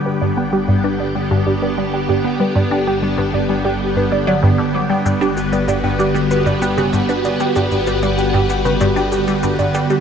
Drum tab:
SH |----------------|----------------|xxxxx-xxxxxxxxxx|xxxxx-xxxxxxxxxx|
CG |----------------|----------------|--o-------------|--o-------------|